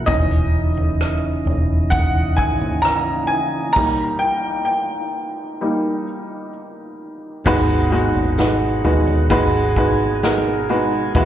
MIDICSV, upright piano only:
0, 0, Header, 1, 2, 480
1, 0, Start_track
1, 0, Key_signature, 5, "minor"
1, 0, Tempo, 923077
1, 39, Time_signature, 4, 2, 24, 8
1, 5850, End_track
2, 0, Start_track
2, 0, Title_t, "Upright piano"
2, 0, Program_c, 0, 0
2, 0, Control_c, 0, 64, 127
2, 32, Note_on_c, 0, 75, 101
2, 37, Note_on_c, 0, 52, 51
2, 40, Note_on_c, 0, 61, 44
2, 43, Note_on_c, 0, 63, 55
2, 45, Control_c, 0, 64, 0
2, 149, Control_c, 0, 64, 127
2, 357, Note_off_c, 0, 52, 0
2, 359, Note_off_c, 0, 61, 0
2, 360, Note_off_c, 0, 63, 0
2, 735, Note_off_c, 0, 75, 0
2, 989, Note_on_c, 0, 78, 82
2, 1230, Note_on_c, 0, 80, 85
2, 1241, Note_off_c, 0, 78, 0
2, 1466, Note_on_c, 0, 82, 94
2, 1482, Note_off_c, 0, 80, 0
2, 1701, Note_on_c, 0, 80, 84
2, 1720, Note_off_c, 0, 82, 0
2, 1938, Note_on_c, 0, 82, 94
2, 1953, Note_on_c, 0, 55, 53
2, 1955, Note_on_c, 0, 58, 51
2, 1958, Note_off_c, 0, 80, 0
2, 1958, Note_on_c, 0, 63, 62
2, 1967, Control_c, 0, 64, 0
2, 2066, Control_c, 0, 64, 127
2, 2171, Note_off_c, 0, 82, 0
2, 2178, Note_on_c, 0, 79, 89
2, 2275, Note_off_c, 0, 55, 0
2, 2276, Note_off_c, 0, 58, 0
2, 2278, Note_off_c, 0, 63, 0
2, 2410, Note_off_c, 0, 79, 0
2, 2418, Note_on_c, 0, 79, 70
2, 2917, Note_on_c, 0, 58, 44
2, 2918, Note_on_c, 0, 55, 46
2, 2920, Note_on_c, 0, 63, 51
2, 3137, Note_off_c, 0, 58, 0
2, 3138, Note_off_c, 0, 55, 0
2, 3139, Note_off_c, 0, 63, 0
2, 3368, Note_off_c, 0, 79, 0
2, 3879, Note_on_c, 0, 56, 105
2, 3879, Note_on_c, 0, 59, 92
2, 3880, Note_on_c, 0, 63, 100
2, 3881, Note_on_c, 0, 44, 73
2, 3882, Note_on_c, 0, 66, 99
2, 3883, Note_on_c, 0, 71, 115
2, 3885, Control_c, 0, 64, 0
2, 3982, Control_c, 0, 64, 127
2, 4107, Note_off_c, 0, 56, 0
2, 4107, Note_off_c, 0, 59, 0
2, 4107, Note_off_c, 0, 63, 0
2, 4109, Note_off_c, 0, 66, 0
2, 4109, Note_off_c, 0, 71, 0
2, 4115, Note_on_c, 0, 56, 80
2, 4117, Note_on_c, 0, 59, 76
2, 4119, Note_on_c, 0, 63, 83
2, 4119, Note_on_c, 0, 66, 75
2, 4120, Note_on_c, 0, 71, 92
2, 4345, Note_off_c, 0, 56, 0
2, 4346, Note_off_c, 0, 59, 0
2, 4347, Note_off_c, 0, 63, 0
2, 4347, Note_off_c, 0, 66, 0
2, 4348, Note_off_c, 0, 71, 0
2, 4359, Note_on_c, 0, 56, 75
2, 4362, Note_on_c, 0, 59, 66
2, 4363, Note_on_c, 0, 63, 77
2, 4364, Note_on_c, 0, 71, 87
2, 4365, Note_on_c, 0, 66, 75
2, 4579, Note_off_c, 0, 44, 0
2, 4587, Note_off_c, 0, 56, 0
2, 4588, Note_off_c, 0, 59, 0
2, 4589, Note_off_c, 0, 63, 0
2, 4589, Note_off_c, 0, 71, 0
2, 4590, Note_off_c, 0, 66, 0
2, 4599, Note_on_c, 0, 56, 73
2, 4600, Note_on_c, 0, 59, 71
2, 4600, Note_on_c, 0, 66, 72
2, 4601, Note_on_c, 0, 63, 75
2, 4602, Note_on_c, 0, 71, 84
2, 4827, Note_off_c, 0, 56, 0
2, 4827, Note_off_c, 0, 59, 0
2, 4827, Note_off_c, 0, 66, 0
2, 4828, Note_off_c, 0, 63, 0
2, 4828, Note_off_c, 0, 71, 0
2, 4836, Note_on_c, 0, 56, 108
2, 4837, Note_on_c, 0, 59, 94
2, 4839, Note_on_c, 0, 63, 97
2, 4840, Note_on_c, 0, 66, 97
2, 4841, Note_on_c, 0, 71, 123
2, 5065, Note_off_c, 0, 56, 0
2, 5066, Note_off_c, 0, 59, 0
2, 5067, Note_off_c, 0, 63, 0
2, 5067, Note_off_c, 0, 66, 0
2, 5068, Note_off_c, 0, 71, 0
2, 5078, Note_on_c, 0, 56, 86
2, 5081, Note_on_c, 0, 59, 79
2, 5081, Note_on_c, 0, 63, 78
2, 5081, Note_on_c, 0, 66, 76
2, 5084, Note_on_c, 0, 71, 94
2, 5306, Note_off_c, 0, 56, 0
2, 5308, Note_off_c, 0, 59, 0
2, 5308, Note_off_c, 0, 63, 0
2, 5308, Note_off_c, 0, 66, 0
2, 5309, Note_off_c, 0, 71, 0
2, 5321, Note_on_c, 0, 56, 86
2, 5322, Note_on_c, 0, 59, 75
2, 5323, Note_on_c, 0, 66, 74
2, 5324, Note_on_c, 0, 63, 78
2, 5325, Note_on_c, 0, 70, 96
2, 5548, Note_off_c, 0, 56, 0
2, 5549, Note_off_c, 0, 59, 0
2, 5549, Note_off_c, 0, 63, 0
2, 5549, Note_off_c, 0, 66, 0
2, 5550, Note_off_c, 0, 70, 0
2, 5561, Note_on_c, 0, 56, 80
2, 5562, Note_on_c, 0, 59, 75
2, 5563, Note_on_c, 0, 63, 74
2, 5563, Note_on_c, 0, 66, 76
2, 5565, Note_on_c, 0, 71, 89
2, 5788, Note_off_c, 0, 56, 0
2, 5788, Note_off_c, 0, 59, 0
2, 5789, Note_off_c, 0, 63, 0
2, 5789, Note_off_c, 0, 66, 0
2, 5790, Note_off_c, 0, 71, 0
2, 5798, Note_on_c, 0, 56, 106
2, 5798, Note_on_c, 0, 59, 97
2, 5800, Note_on_c, 0, 52, 76
2, 5800, Note_on_c, 0, 64, 97
2, 5800, Note_on_c, 0, 66, 97
2, 5802, Note_on_c, 0, 71, 110
2, 5806, Control_c, 0, 64, 0
2, 5850, Note_off_c, 0, 52, 0
2, 5850, Note_off_c, 0, 56, 0
2, 5850, Note_off_c, 0, 59, 0
2, 5850, Note_off_c, 0, 64, 0
2, 5850, Note_off_c, 0, 66, 0
2, 5850, Note_off_c, 0, 71, 0
2, 5850, End_track
0, 0, End_of_file